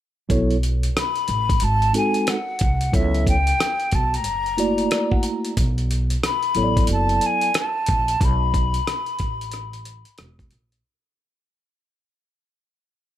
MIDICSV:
0, 0, Header, 1, 5, 480
1, 0, Start_track
1, 0, Tempo, 659341
1, 216, Time_signature, 4, 2, 24, 8
1, 9592, End_track
2, 0, Start_track
2, 0, Title_t, "Flute"
2, 0, Program_c, 0, 73
2, 715, Note_on_c, 0, 83, 88
2, 1189, Note_on_c, 0, 81, 101
2, 1200, Note_off_c, 0, 83, 0
2, 1423, Note_off_c, 0, 81, 0
2, 1430, Note_on_c, 0, 80, 84
2, 1668, Note_on_c, 0, 78, 83
2, 1679, Note_off_c, 0, 80, 0
2, 2146, Note_on_c, 0, 76, 88
2, 2157, Note_off_c, 0, 78, 0
2, 2381, Note_off_c, 0, 76, 0
2, 2391, Note_on_c, 0, 79, 96
2, 2872, Note_on_c, 0, 81, 82
2, 2883, Note_off_c, 0, 79, 0
2, 3023, Note_on_c, 0, 82, 80
2, 3034, Note_off_c, 0, 81, 0
2, 3824, Note_off_c, 0, 82, 0
2, 4551, Note_on_c, 0, 83, 99
2, 4994, Note_off_c, 0, 83, 0
2, 5038, Note_on_c, 0, 81, 95
2, 5282, Note_on_c, 0, 80, 96
2, 5293, Note_off_c, 0, 81, 0
2, 5509, Note_off_c, 0, 80, 0
2, 5525, Note_on_c, 0, 81, 91
2, 5999, Note_on_c, 0, 83, 101
2, 6010, Note_off_c, 0, 81, 0
2, 7428, Note_off_c, 0, 83, 0
2, 9592, End_track
3, 0, Start_track
3, 0, Title_t, "Tine electric piano"
3, 0, Program_c, 1, 4
3, 210, Note_on_c, 1, 54, 83
3, 215, Note_on_c, 1, 59, 69
3, 220, Note_on_c, 1, 64, 74
3, 223, Note_on_c, 1, 69, 67
3, 227, Note_on_c, 1, 73, 87
3, 399, Note_off_c, 1, 54, 0
3, 402, Note_off_c, 1, 59, 0
3, 404, Note_off_c, 1, 64, 0
3, 406, Note_off_c, 1, 69, 0
3, 408, Note_off_c, 1, 73, 0
3, 1407, Note_on_c, 1, 56, 62
3, 1409, Note_on_c, 1, 60, 55
3, 1416, Note_on_c, 1, 63, 54
3, 1419, Note_on_c, 1, 66, 57
3, 1424, Note_on_c, 1, 69, 63
3, 1712, Note_off_c, 1, 56, 0
3, 1713, Note_off_c, 1, 60, 0
3, 1716, Note_off_c, 1, 63, 0
3, 1717, Note_off_c, 1, 66, 0
3, 1720, Note_off_c, 1, 69, 0
3, 2126, Note_on_c, 1, 54, 61
3, 2132, Note_on_c, 1, 59, 54
3, 2135, Note_on_c, 1, 64, 54
3, 2139, Note_on_c, 1, 69, 52
3, 2143, Note_on_c, 1, 73, 64
3, 2431, Note_off_c, 1, 54, 0
3, 2434, Note_off_c, 1, 59, 0
3, 2436, Note_off_c, 1, 64, 0
3, 2438, Note_off_c, 1, 69, 0
3, 2440, Note_off_c, 1, 73, 0
3, 3330, Note_on_c, 1, 58, 70
3, 3333, Note_on_c, 1, 64, 63
3, 3336, Note_on_c, 1, 66, 66
3, 3343, Note_on_c, 1, 57, 57
3, 3348, Note_on_c, 1, 74, 75
3, 3570, Note_off_c, 1, 74, 0
3, 3578, Note_on_c, 1, 74, 72
3, 3717, Note_off_c, 1, 74, 0
3, 3726, Note_on_c, 1, 78, 65
3, 3810, Note_off_c, 1, 78, 0
3, 3815, Note_on_c, 1, 82, 62
3, 4017, Note_off_c, 1, 58, 0
3, 4019, Note_off_c, 1, 64, 0
3, 4020, Note_off_c, 1, 66, 0
3, 4024, Note_off_c, 1, 57, 0
3, 4039, Note_off_c, 1, 82, 0
3, 4768, Note_on_c, 1, 54, 65
3, 4773, Note_on_c, 1, 59, 54
3, 4776, Note_on_c, 1, 64, 56
3, 4780, Note_on_c, 1, 69, 59
3, 4786, Note_on_c, 1, 73, 60
3, 4831, Note_on_c, 1, 74, 68
3, 4840, Note_off_c, 1, 73, 0
3, 5456, Note_off_c, 1, 54, 0
3, 5459, Note_off_c, 1, 59, 0
3, 5460, Note_off_c, 1, 64, 0
3, 5462, Note_off_c, 1, 69, 0
3, 5488, Note_off_c, 1, 74, 0
3, 9592, End_track
4, 0, Start_track
4, 0, Title_t, "Upright bass"
4, 0, Program_c, 2, 32
4, 217, Note_on_c, 2, 35, 99
4, 630, Note_off_c, 2, 35, 0
4, 936, Note_on_c, 2, 33, 84
4, 1143, Note_off_c, 2, 33, 0
4, 1179, Note_on_c, 2, 32, 84
4, 1385, Note_off_c, 2, 32, 0
4, 1901, Note_on_c, 2, 36, 76
4, 2106, Note_off_c, 2, 36, 0
4, 2138, Note_on_c, 2, 37, 99
4, 2551, Note_off_c, 2, 37, 0
4, 2857, Note_on_c, 2, 35, 78
4, 3097, Note_off_c, 2, 35, 0
4, 3097, Note_on_c, 2, 30, 90
4, 3510, Note_off_c, 2, 30, 0
4, 4054, Note_on_c, 2, 35, 95
4, 4469, Note_off_c, 2, 35, 0
4, 4773, Note_on_c, 2, 33, 78
4, 4981, Note_off_c, 2, 33, 0
4, 5014, Note_on_c, 2, 30, 86
4, 5222, Note_off_c, 2, 30, 0
4, 5742, Note_on_c, 2, 34, 78
4, 5946, Note_off_c, 2, 34, 0
4, 5975, Note_on_c, 2, 35, 111
4, 6389, Note_off_c, 2, 35, 0
4, 6698, Note_on_c, 2, 33, 86
4, 7298, Note_off_c, 2, 33, 0
4, 7416, Note_on_c, 2, 28, 80
4, 7623, Note_off_c, 2, 28, 0
4, 7660, Note_on_c, 2, 34, 73
4, 7865, Note_off_c, 2, 34, 0
4, 9592, End_track
5, 0, Start_track
5, 0, Title_t, "Drums"
5, 218, Note_on_c, 9, 36, 103
5, 219, Note_on_c, 9, 42, 77
5, 290, Note_off_c, 9, 36, 0
5, 292, Note_off_c, 9, 42, 0
5, 368, Note_on_c, 9, 42, 33
5, 441, Note_off_c, 9, 42, 0
5, 461, Note_on_c, 9, 42, 60
5, 533, Note_off_c, 9, 42, 0
5, 606, Note_on_c, 9, 42, 54
5, 679, Note_off_c, 9, 42, 0
5, 704, Note_on_c, 9, 37, 98
5, 706, Note_on_c, 9, 42, 86
5, 777, Note_off_c, 9, 37, 0
5, 778, Note_off_c, 9, 42, 0
5, 841, Note_on_c, 9, 42, 33
5, 914, Note_off_c, 9, 42, 0
5, 930, Note_on_c, 9, 42, 55
5, 1003, Note_off_c, 9, 42, 0
5, 1088, Note_on_c, 9, 36, 88
5, 1090, Note_on_c, 9, 42, 52
5, 1161, Note_off_c, 9, 36, 0
5, 1163, Note_off_c, 9, 42, 0
5, 1164, Note_on_c, 9, 42, 76
5, 1237, Note_off_c, 9, 42, 0
5, 1325, Note_on_c, 9, 42, 32
5, 1398, Note_off_c, 9, 42, 0
5, 1414, Note_on_c, 9, 42, 69
5, 1487, Note_off_c, 9, 42, 0
5, 1560, Note_on_c, 9, 42, 44
5, 1633, Note_off_c, 9, 42, 0
5, 1652, Note_on_c, 9, 42, 86
5, 1658, Note_on_c, 9, 37, 94
5, 1725, Note_off_c, 9, 42, 0
5, 1731, Note_off_c, 9, 37, 0
5, 1885, Note_on_c, 9, 42, 71
5, 1901, Note_on_c, 9, 36, 87
5, 1958, Note_off_c, 9, 42, 0
5, 1974, Note_off_c, 9, 36, 0
5, 2044, Note_on_c, 9, 42, 50
5, 2117, Note_off_c, 9, 42, 0
5, 2137, Note_on_c, 9, 36, 108
5, 2139, Note_on_c, 9, 42, 79
5, 2209, Note_off_c, 9, 36, 0
5, 2212, Note_off_c, 9, 42, 0
5, 2289, Note_on_c, 9, 42, 33
5, 2362, Note_off_c, 9, 42, 0
5, 2378, Note_on_c, 9, 36, 70
5, 2382, Note_on_c, 9, 42, 62
5, 2450, Note_off_c, 9, 36, 0
5, 2455, Note_off_c, 9, 42, 0
5, 2526, Note_on_c, 9, 42, 56
5, 2598, Note_off_c, 9, 42, 0
5, 2624, Note_on_c, 9, 37, 102
5, 2626, Note_on_c, 9, 42, 83
5, 2697, Note_off_c, 9, 37, 0
5, 2699, Note_off_c, 9, 42, 0
5, 2764, Note_on_c, 9, 42, 31
5, 2836, Note_off_c, 9, 42, 0
5, 2850, Note_on_c, 9, 42, 58
5, 2858, Note_on_c, 9, 36, 74
5, 2923, Note_off_c, 9, 42, 0
5, 2930, Note_off_c, 9, 36, 0
5, 3013, Note_on_c, 9, 42, 51
5, 3086, Note_off_c, 9, 42, 0
5, 3088, Note_on_c, 9, 42, 74
5, 3160, Note_off_c, 9, 42, 0
5, 3247, Note_on_c, 9, 42, 28
5, 3320, Note_off_c, 9, 42, 0
5, 3335, Note_on_c, 9, 42, 69
5, 3408, Note_off_c, 9, 42, 0
5, 3480, Note_on_c, 9, 42, 46
5, 3553, Note_off_c, 9, 42, 0
5, 3574, Note_on_c, 9, 42, 89
5, 3580, Note_on_c, 9, 37, 95
5, 3646, Note_off_c, 9, 42, 0
5, 3653, Note_off_c, 9, 37, 0
5, 3724, Note_on_c, 9, 36, 79
5, 3797, Note_off_c, 9, 36, 0
5, 3807, Note_on_c, 9, 42, 70
5, 3879, Note_off_c, 9, 42, 0
5, 3964, Note_on_c, 9, 42, 50
5, 4037, Note_off_c, 9, 42, 0
5, 4055, Note_on_c, 9, 42, 86
5, 4056, Note_on_c, 9, 36, 106
5, 4128, Note_off_c, 9, 36, 0
5, 4128, Note_off_c, 9, 42, 0
5, 4208, Note_on_c, 9, 42, 36
5, 4280, Note_off_c, 9, 42, 0
5, 4300, Note_on_c, 9, 42, 61
5, 4373, Note_off_c, 9, 42, 0
5, 4443, Note_on_c, 9, 42, 58
5, 4516, Note_off_c, 9, 42, 0
5, 4539, Note_on_c, 9, 37, 94
5, 4541, Note_on_c, 9, 42, 84
5, 4612, Note_off_c, 9, 37, 0
5, 4614, Note_off_c, 9, 42, 0
5, 4678, Note_on_c, 9, 42, 34
5, 4751, Note_off_c, 9, 42, 0
5, 4765, Note_on_c, 9, 42, 57
5, 4838, Note_off_c, 9, 42, 0
5, 4927, Note_on_c, 9, 36, 98
5, 4928, Note_on_c, 9, 42, 53
5, 5000, Note_off_c, 9, 36, 0
5, 5001, Note_off_c, 9, 42, 0
5, 5003, Note_on_c, 9, 42, 83
5, 5076, Note_off_c, 9, 42, 0
5, 5163, Note_on_c, 9, 42, 33
5, 5236, Note_off_c, 9, 42, 0
5, 5251, Note_on_c, 9, 42, 68
5, 5324, Note_off_c, 9, 42, 0
5, 5398, Note_on_c, 9, 42, 48
5, 5470, Note_off_c, 9, 42, 0
5, 5491, Note_on_c, 9, 42, 95
5, 5497, Note_on_c, 9, 37, 99
5, 5564, Note_off_c, 9, 42, 0
5, 5570, Note_off_c, 9, 37, 0
5, 5725, Note_on_c, 9, 42, 68
5, 5741, Note_on_c, 9, 36, 81
5, 5798, Note_off_c, 9, 42, 0
5, 5814, Note_off_c, 9, 36, 0
5, 5884, Note_on_c, 9, 42, 54
5, 5957, Note_off_c, 9, 42, 0
5, 5975, Note_on_c, 9, 36, 110
5, 5977, Note_on_c, 9, 42, 83
5, 6048, Note_off_c, 9, 36, 0
5, 6050, Note_off_c, 9, 42, 0
5, 6216, Note_on_c, 9, 36, 73
5, 6219, Note_on_c, 9, 42, 60
5, 6289, Note_off_c, 9, 36, 0
5, 6292, Note_off_c, 9, 42, 0
5, 6363, Note_on_c, 9, 42, 59
5, 6436, Note_off_c, 9, 42, 0
5, 6461, Note_on_c, 9, 37, 96
5, 6463, Note_on_c, 9, 42, 81
5, 6534, Note_off_c, 9, 37, 0
5, 6535, Note_off_c, 9, 42, 0
5, 6598, Note_on_c, 9, 42, 34
5, 6671, Note_off_c, 9, 42, 0
5, 6687, Note_on_c, 9, 42, 56
5, 6696, Note_on_c, 9, 36, 72
5, 6760, Note_off_c, 9, 42, 0
5, 6769, Note_off_c, 9, 36, 0
5, 6853, Note_on_c, 9, 42, 49
5, 6926, Note_off_c, 9, 42, 0
5, 6927, Note_on_c, 9, 42, 75
5, 6942, Note_on_c, 9, 37, 31
5, 7000, Note_off_c, 9, 42, 0
5, 7015, Note_off_c, 9, 37, 0
5, 7086, Note_on_c, 9, 42, 31
5, 7159, Note_off_c, 9, 42, 0
5, 7174, Note_on_c, 9, 42, 70
5, 7247, Note_off_c, 9, 42, 0
5, 7318, Note_on_c, 9, 42, 42
5, 7391, Note_off_c, 9, 42, 0
5, 7409, Note_on_c, 9, 42, 86
5, 7415, Note_on_c, 9, 37, 98
5, 7482, Note_off_c, 9, 42, 0
5, 7488, Note_off_c, 9, 37, 0
5, 7564, Note_on_c, 9, 36, 77
5, 7569, Note_on_c, 9, 42, 31
5, 7637, Note_off_c, 9, 36, 0
5, 7642, Note_off_c, 9, 42, 0
5, 7648, Note_on_c, 9, 42, 65
5, 7721, Note_off_c, 9, 42, 0
5, 7805, Note_on_c, 9, 42, 50
5, 7878, Note_off_c, 9, 42, 0
5, 9592, End_track
0, 0, End_of_file